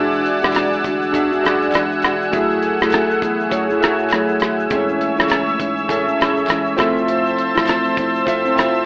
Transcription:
Already playing: E1 E3 G#3 D4 F#4 G#4 D5 E5 F#5 G#5 E6
0.13 shaker
0.26 closed hi-hat, shaker
0.42 B1 E3 G#3 D4 F#4, cross-stick, shaker
0.53 cross-stick, clap, closed hi-hat, shaker
0.73 shaker
0.84 D2 E3 G#3 D4 F#4, kick, closed hi-hat, shaker
1.02 shaker
1.13 E2 D4 F#4 G#4 E5, kick, closed hi-hat, shaker
1.31 G#3 D4 F#4, shaker
1.42 F#2 D4 F#4 G#4 D5, closed hi-hat, shaker
1.46 cross-stick
1.62 shaker
1.72 E3 G#3 D4 F#4, cross-stick, clap, closed hi-hat, shaker
1.92 shaker
2.02 E1, cross-stick, closed hi-hat, shaker
2.22 shaker
2.31 F#1 F#3 A3 E4 F#4 G#4 E5, kick, closed hi-hat, shaker
2.36 G#4
2.51 shaker
2.63 closed hi-hat, shaker
2.80 F#3 A3 E4 G#4, cross-stick, shaker
2.91 cross-stick, clap, closed hi-hat, shaker
3.11 shaker
3.22 E2 F#3 A3 E4 G#4, kick, closed hi-hat, shaker
3.40 shaker
3.49 F#2 A3 F#4 G#4 C#5, kick, closed hi-hat, shaker
3.69 A3 E4 G#4, shaker
3.79 A2 A3 F#4 G#4 E5, closed hi-hat, shaker
3.84 cross-stick
3.99 shaker
4.10 F#3 A3 E4, cross-stick, clap, closed hi-hat, shaker
4.14 G#4
4.29 shaker
4.40 G#1, cross-stick, closed hi-hat, shaker
4.59 shaker
4.70 A1 E3 G#3 A3 C4 C#4 E4 G#4 C#5 E5 E6, kick, closed hi-hat, shaker
4.75 C#4
4.89 shaker
5.01 closed hi-hat, shaker
5.17 C#2 A2 E3 G#3 C#4 E4, cross-stick, shaker
5.29 cross-stick, clap, closed hi-hat, shaker
5.48 shaker
5.59 G#2 E3 G#3 C#4 E4, kick, closed hi-hat, shaker
5.77 shaker
5.88 A2 C#4 G#4 A4 E5, kick, closed hi-hat, shaker
6.06 G#3 C#4 E4, shaker
6.18 A1 C#4 G#4 A4 E5, closed hi-hat, shaker
6.22 cross-stick
6.37 shaker
6.47 E3 G#3 C#4 E4, cross-stick, clap, closed hi-hat, shaker
6.66 shaker
6.77 F1 F3 A3 C4 E4 F4 A4 C5 E5 A5 E6, kick, cross-stick, closed hi-hat, shaker
6.97 shaker
7.08 F1, closed hi-hat, shaker
7.26 shaker
7.38 closed hi-hat, shaker
7.55 A1 F3 A3 C4 E4, cross-stick, shaker
7.66 cross-stick, clap, closed hi-hat, shaker
7.85 shaker
7.97 F1 F3 A3 C4 E4, kick, closed hi-hat, shaker
8.15 shaker
8.25 F2 C4 F4 A4 E5, kick, closed hi-hat, shaker
8.45 A3 C4 E4, shaker
8.55 F1 C4 F4 A4 E5, cross-stick, closed hi-hat, shaker
8.75 shaker

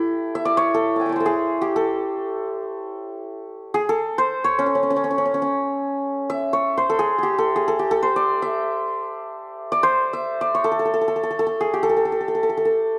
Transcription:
Already playing: E4 G4 A4
0.35 E5
0.45 D5
0.57 C#5
0.74 A4
0.96 G#5 A5
1.01 G5
1.06 D5 E5
1.12 C5 C#5
1.20 A4
1.26 G#4
1.61 G4
1.76 A4
3.74 G#4
3.89 A4
4.18 C5
4.44 C#5
4.59 C#4
4.66 C#4
4.75 C#4
4.83 C#4
4.90 C#4
4.96 C#4
5.04 C#4
5.11 C#4
5.18 C#4
5.25 C#4
5.34 C#4
5.42 C#4
6.30 E5
6.53 C#5
6.77 C5
6.90 A4
6.99 G#4
7.18 G#4
7.23 G4
7.38 A4
7.56 G#4
7.68 A4
7.79 G4
7.91 A4
8.02 C5
8.16 D5
8.42 E5
9.72 D5
9.83 C5
10.13 E5
10.41 D5
10.55 C#5
10.64 A4
10.72 A4
10.79 A4
10.85 A4
10.94 A4
11.01 A4
11.08 A4
11.16 A4
11.23 A4
11.31 A4
11.39 A4
11.47 A4
11.61 G#4
11.73 G4
11.83 A4
11.89 A4
11.97 A4
12.05 A4
12.12 A4
12.20 A4
12.28 A4
12.35 A4
12.43 A4
12.49 A4
12.57 A4
12.65 A4

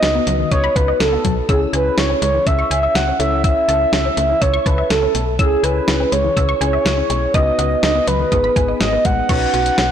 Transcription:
Already playing: B3 D#4 F#4 B4 D#5
0.03 C#2 D#4, snare, closed hi-hat
0.15 B3
0.27 C#2 F#3, closed hi-hat
0.39 D#3
0.51 C#2 C#5 D#6, kick, closed hi-hat
0.64 B5
0.76 C#2 B4 F#5, kick, closed hi-hat
0.88 D#5
1.00 C#2 A4, snare, closed hi-hat
1.12 B3
1.25 B1 F#3, kick, closed hi-hat
1.49 C#2 C#4 E4 G#4 C#5 E6, kick, closed hi-hat
1.73 C#2 B4 G#5, closed hi-hat
1.98 C#2 E4 C#5, snare, closed hi-hat
2.10 C#4
2.22 C#2 G#3 C#5, closed hi-hat
2.34 E3
2.47 C#2 E5 E6, kick, closed hi-hat
2.59 C#6
2.71 C#2 E5 G#5, closed hi-hat
2.83 E5
2.95 C#2 F#5, snare, closed hi-hat
3.08 C#4
3.20 C#2 A3 C#4 E4 A4 C#5 E5, closed hi-hat
3.44 E5 E6, kick, closed hi-hat
3.68 C#2 A5, closed hi-hat
3.93 C#2 E4, snare, closed hi-hat
4.05 C#4
4.17 C#2 A3, closed hi-hat
4.29 E3
4.41 C#2 C#5 E6, kick, closed hi-hat
4.54 C#6
4.66 C#2 B4 A5, kick, closed hi-hat
4.78 E5
4.90 C#2 A4, snare, closed hi-hat
5.03 C#4
5.15 B1 A3, closed hi-hat
5.39 C#2 C#4 E4 G#4 C#5 E6, kick, closed hi-hat
5.63 C#2 B4 G#5, closed hi-hat
5.88 C#2 E4, snare, closed hi-hat
6.00 C#4
6.12 C#2 G#3 C#5, closed hi-hat
6.24 E3
6.37 C#2 E6, kick, closed hi-hat
6.49 C#6
6.61 C#2 C#4 E4 G#4 C#5 G#5, closed hi-hat
6.73 E5
6.85 C#2, snare, closed hi-hat
6.98 C#4
7.10 B1 G#3, closed hi-hat
7.34 C#2 B3 D#4 F#4 B4 D#5 D#6, kick, closed hi-hat
7.59 C#2 F#5, closed hi-hat
7.83 C#2 D#4 D#5, snare, closed hi-hat
7.95 B3
8.07 C#2 F#3 B4, closed hi-hat
8.20 D#3
8.32 G#1 B3 D#4 G#4 B4 D#6, kick, closed hi-hat
8.44 B5
8.56 G#1 G#5, kick, closed hi-hat
8.68 D#5
8.80 G#1 D#5, snare, closed hi-hat
8.93 B3
9.05 A1 G#3 F#5, kick, closed hi-hat
9.29 B1 C#4 D#4 F#4 B4 C#5, kick, closed hi-hat, crash
9.54 B1 F#4, closed hi-hat
9.66 closed hi-hat
9.78 B1 C#4, snare, closed hi-hat

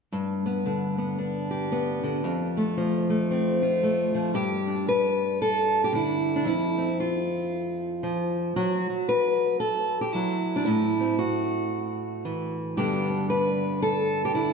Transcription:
0.12 G2
0.46 B3
0.66 D3
0.98 B3
1.18 D4
1.51 G4
1.72 B3
2.03 D3
2.24 F2
2.57 A3
2.77 F3
3.10 A3
3.31 C4
3.62 F4
3.83 A3
4.15 F3
4.34 G2 G4
4.67 D4
4.88 B4
5.42 A4
5.84 G4
5.93 D3 E4
6.36 D4
6.44 F2 E4
6.78 C4
7.00 F4
8.03 F3
8.56 F#3 F#4
8.90 F#3
9.09 B4
9.60 A4
10.01 G4
10.13 F#3 E4
10.56 D4
10.65 A2 E4
11.00 C4
11.19 F#4
12.25 E3
12.77 G2 D3 B3 D4 G4
13.10 D4
13.30 B4
13.82 A4
14.25 G4
14.34 D3 E4

